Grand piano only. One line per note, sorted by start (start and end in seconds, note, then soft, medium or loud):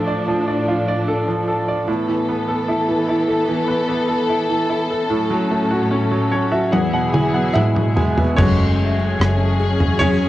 0.00 1.84 A2 soft
0.00 0.28 F3 soft
0.00 0.64 F4 soft
0.00 1.08 A4 soft
0.00 0.07 D5 soft
0.07 0.46 D5 soft
0.28 1.26 F3 medium
0.48 0.87 D5 soft
0.68 1.85 F4 soft
0.88 1.67 D5 soft
1.08 1.46 A4 soft
1.28 1.86 F3 soft
1.48 1.87 A4 soft
1.68 1.88 D5 soft
1.88 5.06 A2 medium
2.08 2.87 E3 soft
2.29 3.85 B3 soft
2.48 3.26 A4 soft
2.68 3.07 E4 soft
2.88 3.47 E3 soft
3.08 4.28 E4 soft
3.28 4.07 A4 soft
3.48 4.48 E3 medium
3.68 5.06 B4 soft
3.89 5.06 B3 soft
4.09 4.89 A4 soft
4.29 4.68 E4 soft
4.49 5.08 E3 soft
4.69 5.09 E4 soft
4.90 5.10 A4 soft
5.10 6.68 A2 medium
5.30 6.10 F#3 soft
5.51 6.69 A3 soft
5.71 6.50 F#4 soft
5.91 6.30 C#4 soft
6.11 6.71 F#3 soft
6.31 6.71 C#4 soft
6.31 6.51 C#5 medium
6.52 6.72 F#4 soft
6.52 6.71 E5 soft
6.72 8.34 E2 soft
6.72 6.91 F#5 medium
6.93 7.74 B2 soft
6.93 7.12 F#5 soft
7.13 8.34 E3 soft
7.13 7.33 G#5 medium
7.34 8.16 B3 soft
7.34 7.54 F#5 soft
7.54 7.95 G#3 soft
7.54 8.34 E4 medium
7.54 8.40 E5 medium
7.54 7.94 F#5 medium
7.75 8.36 B2 soft
7.96 8.36 G#3 soft
7.96 8.35 G#5 soft
8.17 8.37 B3 soft
8.37 9.55 G#3 soft
8.37 9.55 A3 soft
8.37 9.56 C#4 medium
8.37 9.56 F#4 soft
8.37 9.55 C#5 medium
9.99 10.29 C#4 medium
9.99 10.29 C#5 medium